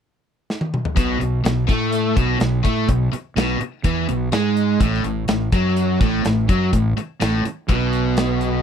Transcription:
0.50 snare
0.61 high tom
0.74 mid tom
0.85 floor tom
0.97 B1 B2, kick, closed hi-hat
1.21 B1 B2, closed hi-hat
1.45 B1 B2, snare, closed hi-hat
1.68 A2 A3, kick, closed hi-hat
1.93 closed hi-hat
2.16 B1 B2, kick, closed hi-hat
2.40 B1 B2, snare, closed hi-hat
2.64 A2 A3, kick, closed hi-hat
2.89 B1 B2, kick, closed hi-hat
3.12 muted distorted electric guitar stroke, muted overdriven electric guitar stroke, muted fingered electric bass stroke, closed hi-hat
3.37 B1 B2, snare, closed hi-hat
3.60 muted distorted electric guitar stroke, muted fingered electric bass stroke, muted overdriven electric guitar stroke, closed hi-hat
3.84 E2 E3, kick, closed hi-hat
4.08 B1 B2, closed hi-hat
4.32 G#2 G#3, snare, closed hi-hat
4.57 closed hi-hat
4.80 A1 A2, kick, closed hi-hat
4.94 snare
5.04 A1 A2, closed hi-hat
5.28 A1 A2, snare, closed hi-hat
5.52 F#2 F#3, kick, closed hi-hat
5.77 closed hi-hat
6.01 A1 A2, kick, closed hi-hat
6.25 A1 A2, snare, closed hi-hat
6.49 F#2 F#3, kick, closed hi-hat
6.73 A1 A2, kick, closed hi-hat
6.97 muted distorted electric guitar stroke, muted fingered electric bass stroke, muted overdriven electric guitar stroke, closed hi-hat
7.21 A1 A2, snare, closed hi-hat
7.45 muted distorted electric guitar stroke, muted fingered electric bass stroke, muted overdriven electric guitar stroke, closed hi-hat
7.69 B1 B2, kick, closed hi-hat
7.93 closed hi-hat
8.17 snare, closed hi-hat
8.41 closed hi-hat

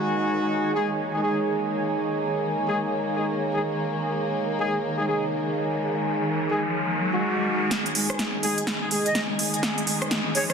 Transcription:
Already playing: D#3 G#3 D#4 F#4 G#4 C#5 G#5
0.03 A#3
0.75 G#3 D#4 G#4
1.14 G#3 D#4 G#4
1.23 G#3 D#4 G#4
2.67 G#3 D#4 G#4
3.15 G#3 D#4 G#4
3.54 G#3 D#4 G#4
3.87 riser
4.59 G#3 D#4 G#4
4.98 G#3 D#4 G#4
5.07 G#3 D#4 G#4
6.51 G#3 D#4 G#4
7.14 G#3 D#4 F#4
7.71 D#3 G#3 G#4, snare, closed hi-hat, riser
7.86 closed hi-hat
7.95 D#5, open hi-hat
8.10 cross-stick, closed hi-hat
8.19 snare, closed hi-hat
8.43 G#3 D#4 G#4, open hi-hat
8.58 closed hi-hat
8.67 snare, closed hi-hat
8.82 G#3 D#4 G#4
8.91 G#3 D#4 G#4, open hi-hat
9.06 D#5, closed hi-hat
9.15 snare, closed hi-hat
9.39 open hi-hat
9.54 closed hi-hat
9.63 snare, closed hi-hat
9.78 closed hi-hat
9.87 open hi-hat
10.02 cross-stick, closed hi-hat
10.11 snare, closed hi-hat
10.35 G#3 D#4 G#4 C#5, open hi-hat
10.50 C#5, cross-stick, closed hi-hat

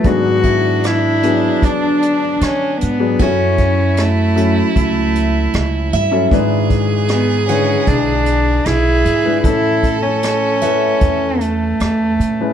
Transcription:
0.04 G#1 G#2 F#3 B3 D4 F#4 G#4, kick, closed hi-hat
0.44 E4, kick, closed hi-hat
0.84 E4, cross-stick, closed hi-hat
1.23 F#3 B3 D4 G#4, closed hi-hat
1.62 D3 D4, kick, closed hi-hat
2.02 closed hi-hat
2.41 D3 C#4, cross-stick, closed hi-hat
2.81 G#2 B3, closed hi-hat
3.00 F#3 B3 D4 G#4
3.19 F#2 F#3 C#4 E4 F#4 A4, kick, closed hi-hat
3.58 kick, closed hi-hat
3.97 A3, cross-stick, closed hi-hat
4.36 F#3 C#4 E4 A4, closed hi-hat
4.76 C#2 A3, kick, closed hi-hat
5.15 closed hi-hat
5.53 C#2, cross-stick, closed hi-hat
5.93 G2 E5, closed hi-hat
6.11 F#3 C#4 E4 A4
6.31 G#1 G#2 G#3 D4 E4 G#4 B4, kick, closed hi-hat
6.70 kick, closed hi-hat
7.08 B3, cross-stick, closed hi-hat
7.49 D3 G#3 C#4 E4 B4 F#5, closed hi-hat
7.87 B1 D4, kick, closed hi-hat
8.26 closed hi-hat
8.65 B1 E4 G#4, cross-stick, closed hi-hat
9.05 G#2, closed hi-hat
9.25 G#3 D4 E4 B4
9.43 A1 A2 A3 C#4 E4 A4, kick, closed hi-hat
9.83 kick, closed hi-hat
10.02 C#4
10.23 cross-stick, closed hi-hat
10.62 A3 C#4 E4 B4 E5, closed hi-hat
11.01 E2, kick, closed hi-hat
11.41 A3, closed hi-hat
11.80 E2, cross-stick, closed hi-hat
12.19 A2, closed hi-hat
12.41 G#3 C#4 E4 B4

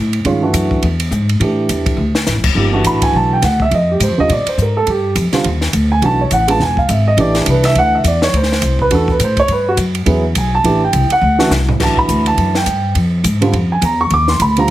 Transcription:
Already playing: A2
0.13 ride
0.25 G2 D#3 G#3 C#4 F4, kick, ride
0.42 E3 A3 D4 F#4
0.53 F#2, kick, hi-hat pedal, ride
0.71 kick
0.83 E2, kick, ride
1.00 ride
1.11 G#2, kick, hi-hat pedal
1.29 ride
1.40 A2 E3 A3 D4 G4, kick, ride
1.69 E2, kick, hi-hat pedal, ride
1.86 kick, ride
1.97 D2
2.15 snare
2.27 A1, snare, hi-hat pedal
2.36 F#1
2.44 D1, kick, crash
2.55 G1 F3 A#3 D#4 G4, kick
2.72 E3 A3 D4 F#4
2.84 A1 B5, kick, hi-hat pedal, ride
3.02 G#5, kick, ride
3.13 B1 A5, kick
3.33 G5
3.42 D2 F#5, kick, snare, hi-hat pedal, ride
3.60 E5, kick
3.71 F2 D#5, kick, ride
3.91 G4
4.00 G#2 C5, kick, hi-hat pedal, ride
4.08 F2
4.17 D#2 D3 G3 C4 F4 D#5
4.29 A#2 D5, kick, ride
4.46 C5, muted upright bass stroke, ride
4.58 G#2, kick, hi-hat pedal
4.62 A#4
4.77 A4
4.87 G2 G4, kick, ride
5.15 F2, kick, hi-hat pedal, ride
5.32 D3 G3 C4 F4, muted upright bass stroke, snare, ride
5.44 D#2, kick, ride
5.61 snare
5.73 D2, kick, hi-hat pedal, ride
5.92 G#5
6.02 B1 E3 A3 D4 F#4 A5, kick, ride
6.21 C#5
6.31 A1 F#5, kick, hi-hat pedal, ride
6.47 G#3 B3 D4 F4 A5, ride
6.59 E1 G#5, kick, snare
6.77 F5, kick
6.88 G#1 E5, kick, hi-hat pedal, ride
7.08 D#5
7.17 A1 E3 A3 D4 G4 D5, kick, ride
7.35 G4, snare, ride
7.46 C2 B4, kick, hi-hat pedal, ride
7.64 E5, snare, ride
7.75 D2 F#5, kick, ride
7.95 E5
8.04 E2 D5, kick, hi-hat pedal, ride
8.22 C#5, snare
8.33 D2, kick, ride
8.37 C5
8.43 snare
8.52 snare
8.62 C2, kick, hi-hat pedal, ride
8.79 B4, kick
8.91 E2 E3 A3 D4 F#4, kick, ride
8.95 A4
9.08 B4, kick
9.19 A2, hi-hat pedal, ride
9.24 C5
9.37 C#5, kick, ride
9.48 G2, kick, ride
9.52 B4
9.69 F#4
9.77 F#2, kick, hi-hat pedal, ride
9.95 ride
10.06 E2 F#3 B3 E4 G#4, kick, ride
10.35 B1 G#5, kick, hi-hat pedal, ride
10.55 A5
10.64 A1 E3 A3 D4 G4, kick, ride
10.84 G5
10.93 C2, kick, hi-hat pedal, ride
11.10 F#5, ride
11.21 D2
11.38 E3 A3 D4 F#4, snare
11.50 C2, snare, hi-hat pedal
11.69 floor tom
11.79 B1 E3 A3 D4 F#4 A5, kick, snare, crash
11.97 B5, kick
12.08 D2, kick, hi-hat pedal, ride
12.26 A5, ride
12.37 F#2, kick, ride
12.55 G5, snare
12.66 G2, kick, hi-hat pedal, ride
12.95 F2, kick, ride
13.24 G#2, kick, hi-hat pedal, ride
13.41 D3 G3 C4 F4, ride
13.53 F2, kick, ride
13.72 G#5
13.81 E2 A#5, kick, hi-hat pedal, ride
14.01 C#6
14.10 D#2 D6, kick, ride
14.28 C6, snare
14.40 D2 B5, kick, hi-hat pedal, ride
14.57 D3 G3 C4 F4 A#5, ride

